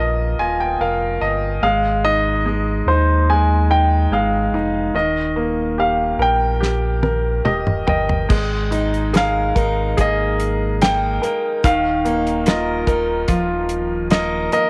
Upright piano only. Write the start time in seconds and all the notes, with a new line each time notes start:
Already playing: D#3 A#3 F4 A#4
0.00 D#5
0.39 F4 G#5
0.60 G5
0.81 A#4 F5
1.21 D#5
1.63 G#3
2.05 D#4
2.46 G#3
2.88 D#4
3.29 G#3
3.70 D#4
4.12 G#3
4.54 D#4
4.94 D#3
5.36 A#3
5.78 G4
6.19 A#4
6.61 G4
7.03 A#4
7.45 G4 D#5
7.87 A#4 G5
8.29 G#3
8.71 D#4
9.13 G#4
9.55 A#4
9.97 G#4
11.22 A#4
11.64 D#3
12.05 A#3
12.47 F4
12.87 A#4
13.28 F4
14.52 A#4